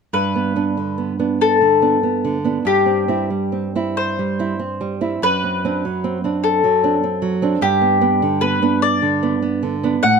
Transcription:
0.13 2.61 G2 soft
0.13 1.37 B4 soft
0.35 0.55 B3 soft
0.56 0.75 B3 soft
0.56 0.75 D4 soft
0.77 1.12 D3 soft
0.98 1.18 B3 soft
1.19 1.58 B3 soft
1.19 1.58 D4 soft
1.42 2.62 A4 soft
1.61 1.95 D3 soft
1.82 2.01 B3 soft
1.82 2.01 D4 soft
2.03 2.36 B3 soft
2.25 2.57 D3 soft
2.44 2.63 B3 soft
2.44 2.64 D4 soft
2.65 5.19 G2 soft
2.65 3.94 G4 soft
2.86 3.07 C4 soft
3.08 3.28 C4 soft
3.08 3.29 E4 soft
3.30 3.67 G3 soft
3.52 3.74 C4 soft
3.76 4.16 C4 soft
3.76 4.16 E4 soft
3.97 5.19 C5 medium
4.19 4.53 G3 soft
4.39 4.58 C4 soft
4.39 4.59 E4 soft
4.59 4.94 C4 soft
4.81 5.14 G3 soft
5.01 5.20 C4 soft
5.01 5.21 E4 soft
5.22 7.58 F#2 medium
5.22 6.41 B4 medium
5.44 5.64 C4 soft
5.65 5.83 C4 soft
5.65 5.83 D4 soft
5.85 6.17 F#3 soft
6.04 6.23 C4 soft
6.24 6.60 C4 soft
6.24 6.60 D4 soft
6.44 7.58 A4 soft
6.64 6.96 F#3 soft
6.84 7.02 C4 soft
6.84 7.02 D4 soft
7.04 7.35 C4 soft
7.22 7.54 F#3 soft
7.42 7.60 C4 soft
7.42 7.61 D4 soft
7.61 9.99 G2 medium
7.61 8.38 G4 medium
7.81 8.00 B3 soft
8.01 8.20 B3 soft
8.01 8.20 D4 soft
8.22 8.55 D3 soft
8.41 8.61 B3 soft
8.41 8.79 B4 medium
8.62 8.99 B3 soft
8.62 8.99 D4 soft
8.82 9.99 D5 medium
9.02 9.34 D3 soft
9.23 9.41 B3 soft
9.23 9.41 D4 soft
9.42 9.75 B3 soft
9.63 9.95 D3 soft
9.83 10.02 B3 soft
9.83 10.02 D4 soft
10.03 10.20 A2 medium
10.03 10.20 F#5 medium

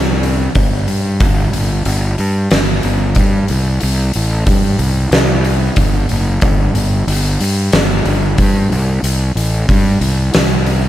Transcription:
0.00 0.47 C2 medium
0.23 open hi-hat soft
0.55 0.84 G1 medium
0.55 kick medium
0.55 open hi-hat medium
0.87 1.22 G2 medium
0.87 open hi-hat medium
1.20 1.49 G1 medium
1.20 kick loud
1.20 open hi-hat medium
1.53 1.82 G1 medium
1.53 open hi-hat medium
1.85 2.14 G1 medium
1.85 open hi-hat medium
2.18 2.47 G2 medium
2.18 open hi-hat soft
2.51 2.80 G1 medium
2.51 snare loud
2.51 open hi-hat medium
2.83 3.12 G1 medium
2.83 open hi-hat soft
3.15 3.45 G2 medium
3.15 kick medium
3.15 open hi-hat medium
3.48 3.78 C2 medium
3.48 open hi-hat medium
3.80 4.11 C2 medium
3.80 open hi-hat medium
4.13 4.44 A1 medium
4.13 open hi-hat medium
4.47 4.75 G2 medium
4.47 kick medium
4.47 open hi-hat medium
4.79 5.08 C2 medium
4.79 open hi-hat soft
5.11 5.68 C2 medium
5.11 snare loud
5.11 open hi-hat medium
5.44 open hi-hat soft
5.76 6.06 G1 medium
5.76 kick medium
5.76 open hi-hat medium
6.09 6.39 F#1 medium
6.09 open hi-hat medium
6.41 6.71 G1 medium
6.41 kick loud
6.41 open hi-hat medium
6.74 7.03 G1 medium
6.74 open hi-hat medium
7.07 7.36 G1 medium
7.07 open hi-hat medium
7.40 7.69 G2 medium
7.40 open hi-hat medium
7.72 8.02 G1 medium
7.72 snare loud
7.72 open hi-hat medium
8.05 8.34 G1 medium
8.05 open hi-hat soft
8.38 8.71 G2 medium
8.38 kick medium
8.38 open hi-hat medium
8.70 8.99 C2 medium
8.70 open hi-hat soft
9.03 9.31 C2 medium
9.03 open hi-hat medium
9.35 9.64 A1 medium
9.35 open hi-hat medium
9.69 9.97 G2 medium
9.69 kick medium
9.69 open hi-hat medium
10.01 10.30 C2 medium
10.01 open hi-hat medium
10.34 10.89 C2 medium
10.34 snare loud
10.34 open hi-hat medium
10.66 open hi-hat soft

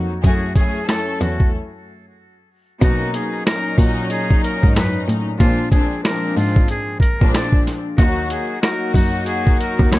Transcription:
0.00 0.16 F2 medium
0.00 0.12 F#3 loud
0.00 0.12 A#3 medium
0.00 0.12 D#4 medium
0.00 0.12 F#4 loud
0.23 0.54 F#2 medium
0.23 0.48 F#2 loud
0.23 0.54 A3 medium
0.23 0.54 C#4 medium
0.23 0.54 E4 medium
0.23 0.54 F#4 medium
0.23 0.54 G#4 loud
0.23 kick loud
0.23 closed hi-hat medium
0.56 0.83 F#2 medium
0.56 0.83 A3 medium
0.56 0.83 C#4 medium
0.56 0.84 E4 medium
0.56 0.85 G#4 medium
0.56 0.87 G#4 loud
0.56 kick loud
0.56 closed hi-hat medium
0.84 1.51 F#2 medium
0.84 1.51 A3 loud
0.84 1.51 C#4 medium
0.84 1.51 E4 medium
0.84 1.51 A4 loud
0.89 1.18 A4 medium
0.89 cross-stick medium
0.89 snare loud
0.89 closed hi-hat medium
1.21 1.52 E2 loud
1.21 1.50 F#4 medium
1.21 closed hi-hat medium
1.40 kick medium
2.82 3.42 B2 loud
2.82 3.06 B2 loud
2.82 3.43 F#3 medium
2.82 3.43 A#3 loud
2.82 3.43 C#4 medium
2.82 3.43 D#4 loud
2.82 3.11 F#4 medium
2.82 kick loud
2.82 closed hi-hat loud
3.14 3.43 G#4 medium
3.14 closed hi-hat medium
3.46 5.29 A#2 loud
3.46 5.29 F#3 medium
3.46 5.30 C#4 loud
3.46 3.75 A#4 loud
3.46 cross-stick medium
3.46 snare loud
3.46 closed hi-hat medium
3.50 5.30 D#4 loud
3.78 4.59 A#2 loud
3.78 4.08 F#4 medium
3.78 kick medium
3.78 open hi-hat medium
4.10 4.39 G#4 medium
4.10 closed hi-hat medium
4.31 kick medium
4.43 4.72 A#4 medium
4.43 closed hi-hat medium
4.63 4.73 G#2 medium
4.63 kick loud
4.76 5.00 F#2 medium
4.76 5.05 B4 medium
4.76 cross-stick medium
4.76 snare loud
4.76 closed hi-hat loud
5.08 5.32 A2 medium
5.08 closed hi-hat medium
5.39 5.70 A#2 loud
5.39 5.64 A#2 loud
5.39 5.70 F3 medium
5.39 5.70 G#3 medium
5.39 5.70 C4 medium
5.39 5.71 D4 loud
5.39 5.69 F4 loud
5.39 kick loud
5.39 closed hi-hat loud
5.71 6.02 A#2 loud
5.71 6.02 F3 medium
5.71 6.02 G#3 medium
5.71 6.03 C4 medium
5.71 6.03 D4 loud
5.71 6.01 G#4 medium
5.71 kick loud
5.71 closed hi-hat medium
6.04 6.96 A#2 loud
6.04 6.96 F3 medium
6.04 6.96 G#3 medium
6.04 6.96 C4 medium
6.04 6.97 D4 loud
6.04 6.33 A#4 medium
6.04 cross-stick medium
6.04 snare loud
6.04 closed hi-hat medium
6.37 7.17 G#2 loud
6.37 6.66 F4 medium
6.37 open hi-hat medium
6.56 kick loud
6.68 6.99 G#4 medium
6.68 closed hi-hat medium
7.00 7.30 A#4 medium
7.00 kick medium
7.00 closed hi-hat medium
7.21 7.79 A#2 loud
7.21 7.31 A#2 medium
7.21 7.79 F3 medium
7.21 7.79 G#3 medium
7.21 7.80 C4 medium
7.21 7.80 D4 loud
7.21 kick medium
7.34 7.63 D5 medium
7.34 cross-stick medium
7.34 snare loud
7.34 closed hi-hat loud
7.53 kick medium
7.67 snare soft
7.67 closed hi-hat medium
7.98 8.23 D#2 loud
7.98 8.59 F#3 loud
7.98 8.59 A#3 loud
7.98 8.59 D#4 loud
7.98 8.27 F#4 loud
7.98 8.59 F#4 loud
7.98 kick loud
7.98 closed hi-hat loud
8.30 8.60 G#4 medium
8.30 closed hi-hat medium
8.62 9.99 F#3 loud
8.62 9.99 A#3 medium
8.62 9.99 D#4 loud
8.62 9.99 F#4 loud
8.62 8.91 A#4 medium
8.62 cross-stick medium
8.62 snare loud
8.62 closed hi-hat medium
8.94 9.75 F#2 medium
8.94 9.24 F#4 medium
8.94 kick medium
8.94 open hi-hat medium
9.26 9.56 G#4 medium
9.26 closed hi-hat medium
9.47 kick medium
9.59 9.88 A#4 medium
9.59 closed hi-hat medium
9.79 9.89 D#2 loud
9.79 kick medium
9.92 9.99 D#2 loud
9.92 9.99 C#5 medium
9.92 cross-stick medium
9.92 snare loud
9.92 closed hi-hat loud

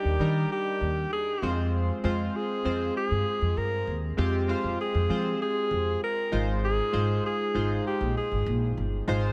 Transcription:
0.00 0.19 G3 medium
0.00 0.20 D4 medium
0.00 0.20 D#4 medium
0.00 0.51 G4 medium
0.00 0.21 A#4 medium
0.00 0.13 D5 medium
0.04 0.16 D#2 medium
0.19 0.43 D#3 medium
0.19 1.29 G3 medium
0.19 1.29 D4 medium
0.19 1.29 D#4 medium
0.19 1.30 A#4 medium
0.52 1.08 G4 medium
0.81 1.04 D#2 medium
1.13 1.55 G#4 medium
1.42 1.88 F2 medium
1.42 1.97 G#3 medium
1.42 1.97 C4 medium
1.42 1.97 F4 medium
1.42 1.97 C5 medium
2.04 2.27 F2 medium
2.04 2.58 G#3 medium
2.04 2.58 C4 medium
2.04 2.59 F4 medium
2.04 2.38 F4 medium
2.04 2.59 C5 medium
2.36 2.96 G#4 medium
2.64 2.88 F2 medium
2.64 3.74 G#3 medium
2.64 3.74 C4 medium
2.64 3.74 F4 medium
2.64 3.74 C5 medium
2.97 3.59 G#4 medium
3.11 3.22 G2 medium
3.41 3.53 F2 medium
3.57 3.80 G2 medium
3.57 4.03 A#4 medium
3.87 4.10 D#2 medium
4.17 4.52 F2 loud
4.17 4.45 G#3 medium
4.17 4.45 C4 medium
4.17 4.45 F4 medium
4.17 4.46 G4 medium
4.48 5.03 G#3 medium
4.48 5.03 C4 medium
4.48 5.03 F4 medium
4.48 4.78 F4 medium
4.48 5.03 C5 medium
4.64 4.75 F2 medium
4.81 5.37 G#4 medium
4.94 5.06 F2 medium
5.09 5.33 F3 medium
5.09 6.19 G#3 medium
5.09 6.19 C4 medium
5.09 6.19 F4 medium
5.09 6.19 C5 medium
5.42 5.98 G#4 loud
5.71 5.94 F2 medium
6.03 6.45 A#4 medium
6.32 6.78 G#1 loud
6.32 6.87 G#3 medium
6.32 6.87 D#4 medium
6.32 6.87 F4 medium
6.32 6.87 C5 medium
6.65 7.21 G#4 loud
6.92 7.16 G#1 medium
6.92 7.48 G#3 medium
6.92 7.48 D#4 medium
6.92 7.48 F4 medium
6.92 7.48 C5 medium
7.26 7.82 G#4 medium
7.54 7.77 G#1 medium
7.54 8.64 G#3 medium
7.54 8.64 D#4 medium
7.54 8.64 F4 medium
7.54 8.64 C5 medium
7.87 8.15 G4 medium
8.01 8.12 A#1 medium
8.17 8.74 G#4 medium
8.31 8.43 G#1 medium
8.46 8.69 A#1 medium
8.77 9.00 G1 medium
9.07 9.32 G#1 loud
9.07 9.32 G#3 medium
9.07 9.32 D#4 medium
9.07 9.32 F4 medium
9.07 9.32 C5 loud

